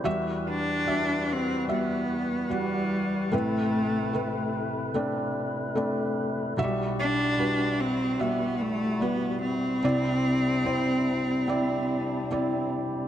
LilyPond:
<<
  \new Staff \with { instrumentName = "Felt piano" } { \time 4/4 \key e \minor \tempo 4 = 74 <g fis' e''>4 <g fis' e''>4 <g fis' e''>4 <g fis' fis''>4 | <a c' b'>4 <a c' b'>4 <a c' d'>4 <a c' d'>4 | <fis g fis' e''>4 <g fis' b'>4 <g fis' e''>4 <g fis' b'>4 | <c' e' d''>4 <c' e' c''>4 <c' e' d''>4 <c' e' d''>4 | }
  \new Staff \with { instrumentName = "Felt piano" } { \clef bass \time 4/4 \key e \minor <e, e>1 | <a,, a,>1 | b,,1 | <c, c>1 | }
  \new Staff \with { instrumentName = "Cello" } { \time 4/4 \key e \minor r8 d'4 c'8 b4 g4 | a4. r2 r8 | r8 d'4 c'8 b8 a8 b8 c'8~ | c'2.~ c'8 r8 | }
  \new Staff \with { instrumentName = "Tonewheel organ" } { \time 4/4 \key e \minor << { b'1~ | b'1 | fis'1 | r1 | } \\ { fis'1 | e'1~ | e'1 | d'1 | } >> }
  \new Staff \with { instrumentName = "Tonewheel organ" } { \clef bass \time 4/4 \key e \minor << { g1 | a1 | g1~ | g1 | } \\ { e1 | c1 | r1 | c1 | } >> }
>>